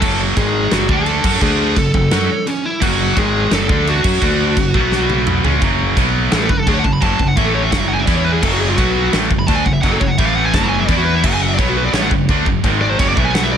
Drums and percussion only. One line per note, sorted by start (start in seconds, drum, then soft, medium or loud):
0.02 kick loud
0.02 china medium
0.02 crash medium
0.37 kick loud
0.37 china medium
0.71 snare loud
0.71 china medium
0.89 kick loud
1.06 china medium
1.24 kick loud
1.24 crash loud
1.41 kick loud
1.41 china medium
1.76 kick loud
1.76 china medium
1.94 kick loud
2.11 snare loud
2.11 china medium
2.47 china medium
2.82 kick loud
2.82 china medium
2.82 crash medium
3.17 kick loud
3.17 china medium
3.51 snare loud
3.51 china medium
3.69 kick loud
3.87 china medium
4.04 kick loud
4.04 crash loud
4.22 kick loud
4.22 china medium
4.57 kick loud
4.57 china medium
4.74 kick loud
4.92 snare medium
5.10 high tom medium
5.27 mid tom loud
5.44 floor tom medium
5.62 kick medium
5.62 china medium
5.97 kick loud
5.97 china medium
6.32 snare loud
6.32 china medium
6.49 kick loud
6.67 kick loud
6.67 china medium
6.84 kick medium
7.02 kick loud
7.02 china medium
7.19 kick medium
7.37 kick loud
7.37 china medium
7.72 kick loud
7.72 snare loud
7.72 china medium
8.07 kick loud
8.07 china medium
8.43 kick loud
8.43 crash loud
8.43 china medium
8.78 kick loud
8.78 china medium
9.13 snare loud
9.13 china medium
9.31 kick loud
9.48 kick loud
9.48 china medium
9.66 kick medium
9.83 kick loud
9.83 china medium
10.01 kick loud
10.18 kick loud
10.18 china medium
10.54 kick loud
10.54 snare loud
10.54 china medium
10.89 kick loud
10.89 china medium
11.24 kick loud
11.24 crash medium
11.24 china medium
11.59 kick loud
11.59 china medium
11.93 snare loud
11.93 china medium
12.11 kick loud
12.29 kick loud
12.29 china medium
12.46 kick loud
12.64 kick loud
12.64 china medium
12.99 kick loud
12.99 china medium
13.17 kick loud
13.35 snare loud
13.35 china medium